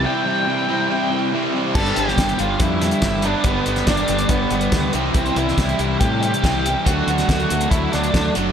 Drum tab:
CC |----------------|x---------------|----------------|----------------|
HH |----------------|-xx-xxx-x-xxx-x-|x-xxxxxxx-xxx-x-|xxx-xxx-x-xxx-x-|
SD |----------------|---oo-----o-o---|---oo-------o---|---oo-------o---|
BD |----------------|o---o---o---o---|o---o---o---o---|o---o---o---o---|

CC |----------------|
HH |x-xxxxxxx-xxx-x-|
SD |---oo-----o-o---|
BD |o---o---o---o---|